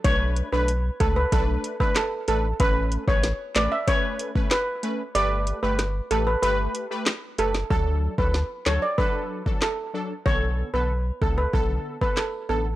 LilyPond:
<<
  \new Staff \with { instrumentName = "Steel pan" } { \time 4/4 \key b \minor \tempo 4 = 94 cis''8 r16 b'16 r8 a'16 b'16 a'16 r8 b'16 a'16 r16 a'16 r16 | b'8 r16 cis''16 r8 d''16 e''16 cis''8. r16 b'8. r16 | d''8 r16 b'16 r8 a'16 b'16 b'8. r8. a'16 r16 | a'8 r16 b'16 r8 cis''16 d''16 b'8. r16 a'8. r16 |
cis''8 r16 b'16 r8 a'16 b'16 a'16 r8 b'16 a'16 r16 a'16 r16 | }
  \new Staff \with { instrumentName = "Synth stab" } { \time 4/4 \key b \minor <a d' b'>8. <a d' b'>16 r8 <a d' b'>16 r16 <a d' b'>8. <a d' b'>16 r8 <a d' b'>16 r16 | <a cis' b'>8. <a cis' b'>16 r8 <a cis' b'>16 r16 <a cis' b'>8. <a cis' b'>16 r8 <a cis' b'>16 r16 | <a g' b'>8. <a g' b'>16 r8 <a g' b'>16 r16 <a g' b'>8. <a g' b'>16 r8 <a g' b'>16 r16 | <fis d' a'>8. <fis d' a'>16 r8 <fis d' a'>16 r16 <fis d' a'>8. <fis d' a'>16 r8 <fis d' a'>16 r16 |
<d b a'>8. <d b a'>16 r8 <d b a'>16 r16 <d b a'>8. <d b a'>16 r8 <d b a'>16 r16 | }
  \new Staff \with { instrumentName = "Sub bass" } { \clef bass \time 4/4 \key b \minor b,,8. b,,8. cis,8 b,,8 r4 a,,8 | a,,8. a,,8 r16 a,,16 r2 r16 | g,,8. g,,8. a,,8 g,,8 r4 fis,,8 | d,8. d,8 r16 d,16 r2 r16 |
b,,8. b,,8. cis,8 b,,8 r4 a,,8 | }
  \new DrumStaff \with { instrumentName = "Drums" } \drummode { \time 4/4 <hh bd>8 hh8 hh8 <hh bd>8 <hh bd>8 hh16 bd16 <hc hh ss sn>8 hh8 | <hh bd>8 hh16 bd16 <hh sn>8 <hc hh sn>8 <hh bd>8 hh16 bd16 <hc hh ss sn>8 hh8 | hh8 hh8 <hh ss sn>8 hh8 hh8 hh8 <hc hh ss sn>8 hh16 sn16 | bd8. bd16 sn8 <hc sn>8 bd8. bd16 <hc ss sn>4 |
bd4 r8 bd8 bd8. bd16 <hc ss sn>4 | }
>>